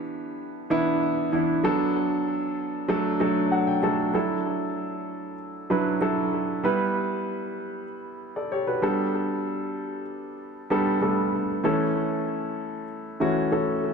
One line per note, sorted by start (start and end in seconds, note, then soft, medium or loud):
0.00 0.70 E3 medium
0.00 0.70 B3 medium
0.00 0.71 D4 medium
0.00 1.66 G4 loud
0.70 1.30 E3 medium
0.70 1.30 B3 medium
0.70 1.30 D4 medium
0.70 1.30 E4 medium
1.32 1.62 E3 medium
1.32 1.62 B3 medium
1.32 1.63 D4 medium
1.32 1.63 E4 medium
1.63 2.83 F#3 medium
1.63 2.83 B3 medium
1.63 2.83 D4 medium
1.63 2.83 A4 medium
2.88 3.18 F#3 medium
2.88 3.19 A3 medium
2.88 3.19 D4 medium
2.88 3.19 A4 loud
3.20 3.80 F#3 medium
3.20 3.80 A3 medium
3.20 3.80 D4 medium
3.20 3.80 A4 medium
3.52 3.66 F#5 medium
3.67 3.82 G5 medium
3.83 4.12 F#3 medium
3.83 4.13 A3 medium
3.83 4.12 D4 medium
3.83 4.13 A4 medium
3.83 4.12 A5 medium
4.14 5.33 F#3 medium
4.14 5.33 D4 medium
4.14 5.33 E4 medium
4.14 5.33 A4 medium
5.70 5.99 F#3 medium
5.70 6.00 D4 medium
5.70 6.00 E4 medium
5.70 6.00 B4 medium
6.01 6.61 F#3 medium
6.01 6.61 D4 medium
6.01 6.61 E4 medium
6.01 6.61 A4 medium
6.63 7.83 G3 medium
6.63 7.83 B3 medium
6.63 7.83 E4 medium
6.63 7.83 B4 medium
8.36 8.51 A4 medium
8.36 8.51 D5 medium
8.52 8.67 G4 medium
8.52 8.67 C#5 medium
8.67 8.97 F#4 medium
8.67 8.97 B4 medium
8.82 10.01 G3 medium
8.82 10.01 B3 medium
8.82 10.02 D4 medium
8.82 10.02 A4 medium
10.70 11.00 G3 medium
10.70 11.00 B3 medium
10.70 11.00 D4 medium
10.70 11.01 A4 medium
11.01 11.61 G3 medium
11.01 11.08 A3 medium
11.01 11.61 D4 medium
11.01 11.61 A4 medium
11.08 11.64 B3 medium
11.64 12.83 E3 medium
11.64 12.83 A3 medium
11.64 12.83 C#4 medium
11.64 12.83 A4 medium
13.20 13.50 E3 medium
13.20 13.50 A3 medium
13.20 13.50 C#4 medium
13.20 13.51 F#4 medium
13.51 13.94 E3 medium
13.51 13.94 A3 medium
13.51 13.94 C#4 medium
13.51 13.94 A4 medium